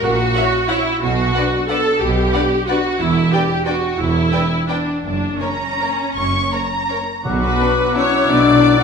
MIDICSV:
0, 0, Header, 1, 11, 480
1, 0, Start_track
1, 0, Key_signature, 2, "minor"
1, 0, Tempo, 329852
1, 47, Time_signature, 3, 2, 24, 8
1, 6289, Tempo, 367197
1, 10129, Tempo, 340716
1, 12347, End_track
2, 0, Start_track
2, 0, Title_t, "Flute"
2, 0, Program_c, 0, 73
2, 10108, Note_on_c, 0, 90, 55
2, 12347, Note_off_c, 0, 90, 0
2, 12347, End_track
3, 0, Start_track
3, 0, Title_t, "Oboe"
3, 0, Program_c, 1, 68
3, 10114, Note_on_c, 1, 86, 51
3, 12347, Note_off_c, 1, 86, 0
3, 12347, End_track
4, 0, Start_track
4, 0, Title_t, "Violin section"
4, 0, Program_c, 2, 48
4, 498, Note_on_c, 2, 78, 49
4, 614, Note_off_c, 2, 78, 0
4, 998, Note_on_c, 2, 78, 47
4, 1114, Note_off_c, 2, 78, 0
4, 1964, Note_on_c, 2, 78, 49
4, 2080, Note_off_c, 2, 78, 0
4, 2455, Note_on_c, 2, 78, 44
4, 2571, Note_off_c, 2, 78, 0
4, 3396, Note_on_c, 2, 78, 42
4, 3512, Note_off_c, 2, 78, 0
4, 3893, Note_on_c, 2, 78, 42
4, 4009, Note_off_c, 2, 78, 0
4, 4851, Note_on_c, 2, 79, 45
4, 4967, Note_off_c, 2, 79, 0
4, 5336, Note_on_c, 2, 79, 41
4, 5452, Note_off_c, 2, 79, 0
4, 6287, Note_on_c, 2, 79, 41
4, 6392, Note_off_c, 2, 79, 0
4, 6766, Note_on_c, 2, 79, 37
4, 6871, Note_off_c, 2, 79, 0
4, 7724, Note_on_c, 2, 82, 52
4, 8640, Note_off_c, 2, 82, 0
4, 8688, Note_on_c, 2, 85, 47
4, 9156, Note_off_c, 2, 85, 0
4, 9171, Note_on_c, 2, 82, 48
4, 10134, Note_off_c, 2, 82, 0
4, 10610, Note_on_c, 2, 62, 44
4, 10722, Note_off_c, 2, 62, 0
4, 11102, Note_on_c, 2, 62, 39
4, 11214, Note_off_c, 2, 62, 0
4, 12021, Note_on_c, 2, 62, 42
4, 12134, Note_off_c, 2, 62, 0
4, 12347, End_track
5, 0, Start_track
5, 0, Title_t, "Violin section"
5, 0, Program_c, 3, 48
5, 520, Note_on_c, 3, 73, 45
5, 524, Note_on_c, 3, 76, 49
5, 637, Note_off_c, 3, 73, 0
5, 641, Note_off_c, 3, 76, 0
5, 1014, Note_on_c, 3, 73, 51
5, 1017, Note_on_c, 3, 76, 47
5, 1131, Note_off_c, 3, 73, 0
5, 1133, Note_off_c, 3, 76, 0
5, 1976, Note_on_c, 3, 74, 49
5, 1978, Note_on_c, 3, 71, 48
5, 2092, Note_off_c, 3, 74, 0
5, 2095, Note_off_c, 3, 71, 0
5, 2460, Note_on_c, 3, 71, 45
5, 2460, Note_on_c, 3, 74, 47
5, 2577, Note_off_c, 3, 71, 0
5, 2577, Note_off_c, 3, 74, 0
5, 3406, Note_on_c, 3, 74, 47
5, 3418, Note_on_c, 3, 71, 47
5, 3522, Note_off_c, 3, 74, 0
5, 3534, Note_off_c, 3, 71, 0
5, 3920, Note_on_c, 3, 74, 44
5, 3922, Note_on_c, 3, 71, 48
5, 4037, Note_off_c, 3, 74, 0
5, 4039, Note_off_c, 3, 71, 0
5, 4847, Note_on_c, 3, 71, 46
5, 4853, Note_on_c, 3, 74, 47
5, 4963, Note_off_c, 3, 71, 0
5, 4969, Note_off_c, 3, 74, 0
5, 5324, Note_on_c, 3, 74, 40
5, 5326, Note_on_c, 3, 71, 43
5, 5441, Note_off_c, 3, 74, 0
5, 5442, Note_off_c, 3, 71, 0
5, 6292, Note_on_c, 3, 71, 42
5, 6298, Note_on_c, 3, 74, 41
5, 6397, Note_off_c, 3, 71, 0
5, 6402, Note_off_c, 3, 74, 0
5, 6771, Note_on_c, 3, 74, 38
5, 6773, Note_on_c, 3, 71, 39
5, 6875, Note_off_c, 3, 74, 0
5, 6878, Note_off_c, 3, 71, 0
5, 7707, Note_on_c, 3, 73, 37
5, 7709, Note_on_c, 3, 70, 39
5, 7811, Note_off_c, 3, 73, 0
5, 7813, Note_off_c, 3, 70, 0
5, 8226, Note_on_c, 3, 70, 34
5, 8235, Note_on_c, 3, 73, 34
5, 8330, Note_off_c, 3, 70, 0
5, 8339, Note_off_c, 3, 73, 0
5, 9171, Note_on_c, 3, 70, 35
5, 9173, Note_on_c, 3, 73, 38
5, 9275, Note_off_c, 3, 70, 0
5, 9278, Note_off_c, 3, 73, 0
5, 9646, Note_on_c, 3, 70, 37
5, 9650, Note_on_c, 3, 73, 36
5, 9751, Note_off_c, 3, 70, 0
5, 9755, Note_off_c, 3, 73, 0
5, 10363, Note_on_c, 3, 71, 64
5, 11056, Note_off_c, 3, 71, 0
5, 11110, Note_on_c, 3, 73, 65
5, 11572, Note_off_c, 3, 73, 0
5, 11578, Note_on_c, 3, 74, 72
5, 12289, Note_on_c, 3, 78, 72
5, 12290, Note_off_c, 3, 74, 0
5, 12347, Note_off_c, 3, 78, 0
5, 12347, End_track
6, 0, Start_track
6, 0, Title_t, "Viola section"
6, 0, Program_c, 4, 48
6, 52, Note_on_c, 4, 66, 85
6, 1005, Note_on_c, 4, 64, 76
6, 1022, Note_off_c, 4, 66, 0
6, 1486, Note_off_c, 4, 64, 0
6, 1497, Note_on_c, 4, 66, 80
6, 2453, Note_off_c, 4, 66, 0
6, 2470, Note_on_c, 4, 69, 84
6, 2930, Note_off_c, 4, 69, 0
6, 2932, Note_on_c, 4, 67, 71
6, 3900, Note_on_c, 4, 66, 75
6, 3903, Note_off_c, 4, 67, 0
6, 4362, Note_off_c, 4, 66, 0
6, 4376, Note_on_c, 4, 64, 73
6, 4842, Note_on_c, 4, 67, 75
6, 4852, Note_off_c, 4, 64, 0
6, 5331, Note_off_c, 4, 67, 0
6, 5333, Note_on_c, 4, 66, 67
6, 5791, Note_off_c, 4, 66, 0
6, 5794, Note_on_c, 4, 64, 70
6, 6759, Note_off_c, 4, 64, 0
6, 6766, Note_on_c, 4, 62, 58
6, 7224, Note_off_c, 4, 62, 0
6, 7241, Note_on_c, 4, 62, 62
6, 7700, Note_on_c, 4, 61, 54
6, 7707, Note_off_c, 4, 62, 0
6, 9898, Note_off_c, 4, 61, 0
6, 10120, Note_on_c, 4, 66, 62
6, 11050, Note_off_c, 4, 66, 0
6, 11091, Note_on_c, 4, 64, 59
6, 12347, Note_off_c, 4, 64, 0
6, 12347, End_track
7, 0, Start_track
7, 0, Title_t, "French horn section"
7, 0, Program_c, 5, 60
7, 528, Note_on_c, 5, 64, 46
7, 542, Note_on_c, 5, 61, 47
7, 706, Note_off_c, 5, 64, 0
7, 717, Note_off_c, 5, 61, 0
7, 1009, Note_on_c, 5, 64, 46
7, 1011, Note_on_c, 5, 61, 48
7, 1183, Note_off_c, 5, 64, 0
7, 1184, Note_off_c, 5, 61, 0
7, 1997, Note_on_c, 5, 62, 49
7, 1998, Note_on_c, 5, 59, 45
7, 2171, Note_off_c, 5, 62, 0
7, 2172, Note_off_c, 5, 59, 0
7, 2459, Note_on_c, 5, 59, 47
7, 2470, Note_on_c, 5, 62, 46
7, 2632, Note_off_c, 5, 59, 0
7, 2641, Note_off_c, 5, 62, 0
7, 3390, Note_on_c, 5, 62, 46
7, 3398, Note_on_c, 5, 59, 43
7, 3574, Note_off_c, 5, 62, 0
7, 3580, Note_off_c, 5, 59, 0
7, 3906, Note_on_c, 5, 62, 45
7, 3909, Note_on_c, 5, 59, 44
7, 4076, Note_off_c, 5, 62, 0
7, 4078, Note_off_c, 5, 59, 0
7, 4843, Note_on_c, 5, 62, 47
7, 4853, Note_on_c, 5, 59, 43
7, 5020, Note_off_c, 5, 62, 0
7, 5028, Note_off_c, 5, 59, 0
7, 5322, Note_on_c, 5, 62, 43
7, 5337, Note_on_c, 5, 59, 43
7, 5494, Note_off_c, 5, 62, 0
7, 5505, Note_off_c, 5, 59, 0
7, 6271, Note_on_c, 5, 59, 37
7, 6272, Note_on_c, 5, 62, 38
7, 6447, Note_off_c, 5, 59, 0
7, 6448, Note_off_c, 5, 62, 0
7, 6746, Note_on_c, 5, 62, 42
7, 6755, Note_on_c, 5, 59, 38
7, 6920, Note_off_c, 5, 62, 0
7, 6927, Note_off_c, 5, 59, 0
7, 7681, Note_on_c, 5, 58, 36
7, 7683, Note_on_c, 5, 61, 38
7, 7870, Note_off_c, 5, 58, 0
7, 7872, Note_off_c, 5, 61, 0
7, 8178, Note_on_c, 5, 58, 37
7, 8186, Note_on_c, 5, 61, 36
7, 8357, Note_off_c, 5, 58, 0
7, 8363, Note_off_c, 5, 61, 0
7, 9140, Note_on_c, 5, 61, 36
7, 9144, Note_on_c, 5, 58, 33
7, 9324, Note_off_c, 5, 61, 0
7, 9328, Note_off_c, 5, 58, 0
7, 9643, Note_on_c, 5, 61, 37
7, 9646, Note_on_c, 5, 58, 34
7, 9819, Note_off_c, 5, 61, 0
7, 9821, Note_off_c, 5, 58, 0
7, 10373, Note_on_c, 5, 59, 50
7, 11061, Note_off_c, 5, 59, 0
7, 11110, Note_on_c, 5, 61, 55
7, 11562, Note_on_c, 5, 62, 60
7, 11572, Note_off_c, 5, 61, 0
7, 12259, Note_on_c, 5, 66, 63
7, 12268, Note_off_c, 5, 62, 0
7, 12347, Note_off_c, 5, 66, 0
7, 12347, End_track
8, 0, Start_track
8, 0, Title_t, "Bassoon"
8, 0, Program_c, 6, 70
8, 10113, Note_on_c, 6, 54, 50
8, 12347, Note_off_c, 6, 54, 0
8, 12347, End_track
9, 0, Start_track
9, 0, Title_t, "Timpani"
9, 0, Program_c, 7, 47
9, 10118, Note_on_c, 7, 47, 60
9, 10813, Note_off_c, 7, 47, 0
9, 12347, End_track
10, 0, Start_track
10, 0, Title_t, "Cello section"
10, 0, Program_c, 8, 48
10, 41, Note_on_c, 8, 46, 56
10, 436, Note_off_c, 8, 46, 0
10, 1490, Note_on_c, 8, 47, 59
10, 1889, Note_off_c, 8, 47, 0
10, 2944, Note_on_c, 8, 47, 60
10, 3333, Note_off_c, 8, 47, 0
10, 4381, Note_on_c, 8, 40, 59
10, 4772, Note_off_c, 8, 40, 0
10, 5800, Note_on_c, 8, 40, 53
10, 6202, Note_off_c, 8, 40, 0
10, 7234, Note_on_c, 8, 42, 48
10, 7629, Note_off_c, 8, 42, 0
10, 8675, Note_on_c, 8, 42, 46
10, 9076, Note_off_c, 8, 42, 0
10, 10126, Note_on_c, 8, 47, 49
10, 10536, Note_off_c, 8, 47, 0
10, 11561, Note_on_c, 8, 47, 58
10, 11953, Note_off_c, 8, 47, 0
10, 12347, End_track
11, 0, Start_track
11, 0, Title_t, "Double bass section"
11, 0, Program_c, 10, 48
11, 39, Note_on_c, 10, 34, 57
11, 435, Note_off_c, 10, 34, 0
11, 1487, Note_on_c, 10, 35, 55
11, 1887, Note_off_c, 10, 35, 0
11, 2929, Note_on_c, 10, 35, 56
11, 3325, Note_off_c, 10, 35, 0
11, 4370, Note_on_c, 10, 28, 51
11, 4767, Note_off_c, 10, 28, 0
11, 5803, Note_on_c, 10, 28, 52
11, 6204, Note_off_c, 10, 28, 0
11, 7222, Note_on_c, 10, 30, 44
11, 7623, Note_off_c, 10, 30, 0
11, 8675, Note_on_c, 10, 30, 43
11, 9076, Note_off_c, 10, 30, 0
11, 10112, Note_on_c, 10, 35, 52
11, 10528, Note_off_c, 10, 35, 0
11, 11559, Note_on_c, 10, 35, 48
11, 11953, Note_off_c, 10, 35, 0
11, 12347, End_track
0, 0, End_of_file